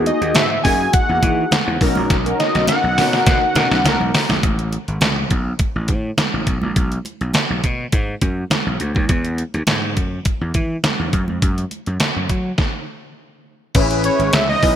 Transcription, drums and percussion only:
0.06 closed hi-hat medium
0.06 muted conga soft
0.22 closed hi-hat soft
0.35 snare loud
0.35 clap medium
0.35 closed hi-hat loud
0.35 high conga medium
0.65 kick medium
0.65 open hi-hat medium
0.93 kick loud
0.93 closed hi-hat loud
0.93 muted conga medium
1.23 kick medium
1.23 closed hi-hat medium
1.23 muted conga medium
1.23 low conga medium
1.51 snare loud
1.51 clap loud
1.51 closed hi-hat loud
1.51 high conga medium
1.81 kick medium
1.81 open hi-hat medium
1.95 high conga medium
2.10 kick loud
2.10 snare medium
2.10 closed hi-hat loud
2.26 closed hi-hat medium
2.40 snare medium
2.40 closed hi-hat medium
2.55 snare medium
2.55 closed hi-hat soft
2.67 snare medium
2.67 closed hi-hat loud
2.67 high conga medium
2.98 snare medium
2.98 open hi-hat medium
3.13 snare medium
3.26 kick loud
3.26 snare medium
3.26 closed hi-hat loud
3.26 muted conga medium
3.55 snare loud
3.55 closed hi-hat medium
3.55 muted conga medium
3.55 low conga medium
3.71 snare medium
3.85 snare loud
3.85 closed hi-hat medium
3.85 high conga medium
4.01 high conga soft
4.14 snare loud
4.14 open hi-hat medium
4.29 snare medium
4.29 high conga medium
4.43 kick loud
4.43 closed hi-hat medium
4.59 closed hi-hat soft
4.72 closed hi-hat medium
4.72 muted conga soft
4.88 closed hi-hat soft
5.01 snare loud
5.01 clap medium
5.01 closed hi-hat medium
5.01 high conga medium
5.31 kick medium
5.31 closed hi-hat medium
5.59 kick loud
5.59 closed hi-hat loud
5.59 muted conga soft
5.88 kick medium
5.88 closed hi-hat medium
5.88 muted conga soft
5.88 low conga medium
6.18 snare loud
6.18 clap medium
6.18 closed hi-hat medium
6.18 high conga medium
6.47 kick medium
6.47 closed hi-hat medium
6.62 high conga medium
6.76 kick loud
6.76 closed hi-hat medium
6.92 closed hi-hat soft
7.05 closed hi-hat medium
7.05 muted conga soft
7.21 closed hi-hat soft
7.34 snare loud
7.34 clap medium
7.34 closed hi-hat loud
7.34 high conga medium
7.64 kick medium
7.64 closed hi-hat medium
7.92 kick loud
7.92 closed hi-hat loud
7.92 muted conga soft
8.21 kick medium
8.21 closed hi-hat medium
8.21 muted conga soft
8.50 snare loud
8.50 clap medium
8.50 closed hi-hat medium
8.50 high conga medium
8.80 closed hi-hat medium
8.95 kick medium
8.95 high conga medium
9.09 kick loud
9.09 closed hi-hat medium
9.25 closed hi-hat soft
9.38 closed hi-hat medium
9.54 closed hi-hat soft
9.67 snare loud
9.67 clap medium
9.67 closed hi-hat loud
9.67 high conga medium
9.97 kick medium
9.97 closed hi-hat medium
10.25 kick loud
10.25 closed hi-hat loud
10.25 muted conga soft
10.54 kick medium
10.54 closed hi-hat medium
10.54 muted conga soft
10.54 low conga medium
10.84 snare loud
10.84 clap medium
10.84 closed hi-hat medium
10.84 high conga medium
11.13 kick medium
11.13 closed hi-hat medium
11.28 high conga medium
11.42 kick loud
11.42 closed hi-hat medium
11.58 closed hi-hat soft
11.71 closed hi-hat medium
11.71 muted conga soft
11.86 closed hi-hat soft
12.00 snare loud
12.00 clap medium
12.00 closed hi-hat medium
12.00 high conga medium
12.29 kick medium
12.29 closed hi-hat medium
12.58 kick loud
12.58 snare medium
13.75 kick loud
13.75 closed hi-hat loud
13.75 crash medium
13.91 closed hi-hat medium
14.04 closed hi-hat medium
14.20 closed hi-hat soft
14.33 snare loud
14.33 clap loud
14.33 closed hi-hat loud
14.63 kick medium
14.63 open hi-hat medium

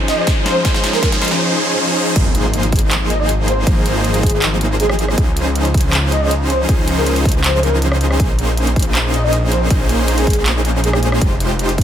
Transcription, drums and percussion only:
0.08 snare medium
0.08 closed hi-hat medium
0.27 kick loud
0.27 snare medium
0.27 closed hi-hat medium
0.46 snare medium
0.46 closed hi-hat medium
0.65 kick loud
0.65 snare medium
0.65 closed hi-hat medium
0.74 snare medium
0.84 snare loud
0.84 closed hi-hat medium
0.93 snare medium
1.03 kick loud
1.03 snare medium
1.03 closed hi-hat medium
1.12 snare medium
1.12 closed hi-hat medium
1.22 snare loud
1.22 closed hi-hat soft
1.25 closed hi-hat medium
1.28 snare medium
1.28 closed hi-hat medium
2.16 kick loud
2.16 closed hi-hat medium
2.16 crash loud
2.35 closed hi-hat medium
2.54 closed hi-hat medium
2.63 closed hi-hat medium
2.72 kick loud
2.72 closed hi-hat soft
2.76 closed hi-hat medium
2.79 closed hi-hat medium
2.91 clap loud
2.91 closed hi-hat medium
3.10 closed hi-hat medium
3.29 closed hi-hat medium
3.48 closed hi-hat medium
3.67 kick loud
3.67 closed hi-hat medium
3.86 closed hi-hat medium
4.04 closed hi-hat medium
4.14 closed hi-hat medium
4.23 kick loud
4.23 closed hi-hat medium
4.27 closed hi-hat medium
4.30 closed hi-hat medium
4.42 clap loud
4.42 closed hi-hat medium
4.61 closed hi-hat medium
4.80 closed hi-hat medium
4.89 cross-stick medium
4.99 closed hi-hat medium
5.08 cross-stick medium
5.18 kick loud
5.18 closed hi-hat medium
5.37 closed hi-hat medium
5.56 closed hi-hat medium
5.65 closed hi-hat medium
5.74 kick loud
5.74 closed hi-hat soft
5.78 closed hi-hat medium
5.81 closed hi-hat medium
5.93 clap loud
5.93 closed hi-hat medium
6.12 closed hi-hat medium
6.31 closed hi-hat medium
6.50 closed hi-hat medium
6.69 kick loud
6.69 closed hi-hat medium
6.88 closed hi-hat medium
7.07 closed hi-hat medium
7.16 closed hi-hat medium
7.25 kick loud
7.25 closed hi-hat soft
7.29 closed hi-hat medium
7.32 closed hi-hat medium
7.44 clap loud
7.44 closed hi-hat medium
7.63 closed hi-hat medium
7.82 closed hi-hat medium
7.92 cross-stick medium
8.01 closed hi-hat medium
8.11 cross-stick medium
8.20 kick loud
8.20 closed hi-hat medium
8.39 closed hi-hat medium
8.57 closed hi-hat medium
8.67 closed hi-hat medium
8.76 kick loud
8.76 closed hi-hat soft
8.79 closed hi-hat medium
8.82 closed hi-hat medium
8.95 clap loud
8.95 closed hi-hat medium
9.14 closed hi-hat medium
9.33 closed hi-hat medium
9.52 closed hi-hat medium
9.70 kick loud
9.70 closed hi-hat medium
9.89 closed hi-hat medium
10.08 closed hi-hat medium
10.18 closed hi-hat medium
10.27 kick loud
10.27 closed hi-hat soft
10.30 closed hi-hat medium
10.33 closed hi-hat medium
10.46 clap loud
10.46 closed hi-hat medium
10.65 closed hi-hat medium
10.84 closed hi-hat medium
10.93 cross-stick medium
11.03 closed hi-hat medium
11.12 cross-stick medium
11.21 kick loud
11.21 closed hi-hat medium
11.40 closed hi-hat medium
11.59 closed hi-hat medium
11.69 closed hi-hat medium
11.78 kick loud
11.78 closed hi-hat soft

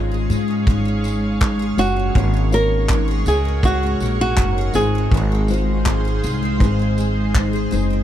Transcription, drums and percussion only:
0.31 tambourine medium
0.67 kick loud
1.04 tambourine medium
1.41 kick loud
1.41 clap loud
1.78 tambourine medium
2.15 kick loud
2.52 tambourine medium
2.89 kick loud
2.89 clap loud
3.26 tambourine medium
3.63 kick loud
4.00 tambourine medium
4.37 kick loud
4.37 clap loud
4.74 tambourine medium
5.12 kick loud
5.48 tambourine medium
5.86 kick loud
5.86 clap loud
6.24 tambourine medium
6.60 kick loud
6.98 tambourine medium
7.35 kick loud
7.35 clap loud
7.72 tambourine medium

